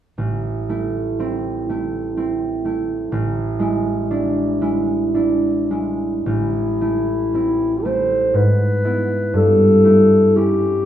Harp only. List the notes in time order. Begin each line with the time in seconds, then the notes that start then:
0.18 A1
0.69 A3 E4
1.20 C4 E4
1.69 A3 E4
2.17 C4 E4
2.65 A3 E4
3.12 A1
3.59 G#3 E4
4.11 D4 E4
4.61 G#3 E4
5.14 D4 E4
5.71 G#3 E4
6.26 A1
6.81 A3 E4
7.34 C4 E4
7.85 A3 E4
8.34 G#2
8.84 B3 E4
9.34 G2
9.84 A3 E4
10.36 C#4 E4